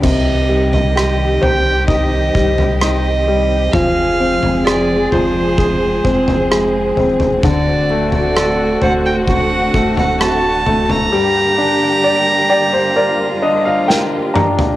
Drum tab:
CC |x---------------|----------------|----------------|----------------|
SD |----r-------r---|----r-------r---|----r-------r---|------------o---|
T2 |----------------|----------------|----------------|--------------o-|
FT |o--o--o-o--o----|o--o--o-o--o--oo|o--o--o-o--o--oo|---------------o|
BD |o-------o-o-----|o-------o-o-----|o-------o-o-----|----------------|